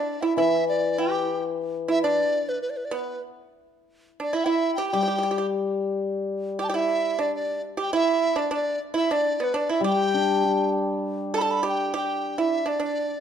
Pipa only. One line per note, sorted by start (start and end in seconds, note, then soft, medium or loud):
0.00 0.20 D4 medium
0.22 0.36 E4 medium
0.38 0.93 E4 medium
0.98 1.40 G4 medium
1.88 2.02 E4 medium
2.04 2.58 D4 medium
2.91 3.17 B3 medium
4.20 4.34 D4 medium
4.33 4.45 E4 medium
4.46 4.75 E4 medium
4.78 4.92 G4 medium
4.93 5.00 G4 medium
5.03 5.06 G4 medium
5.08 5.15 G4 medium
5.18 5.22 G4 medium
5.23 5.30 G4 medium
5.31 5.37 G4 medium
5.38 5.45 G4 medium
6.59 6.66 G4 medium
6.69 6.74 G4 medium
6.74 7.15 E4 medium
7.19 7.60 D4 medium
7.77 7.91 G4 medium
7.93 8.33 E4 medium
8.36 8.49 D4 medium
8.51 8.78 D4 medium
8.94 9.08 E4 medium
9.11 9.37 D4 medium
9.40 9.53 B3 medium
9.54 9.67 D4 medium
9.69 9.83 E4 medium
9.84 10.70 G4 medium
11.34 11.40 A4 medium
11.41 11.62 A4 medium
11.63 11.91 G4 medium
11.94 12.34 G4 medium
12.38 12.65 E4 medium
12.66 12.78 D4 medium
12.80 13.20 D4 medium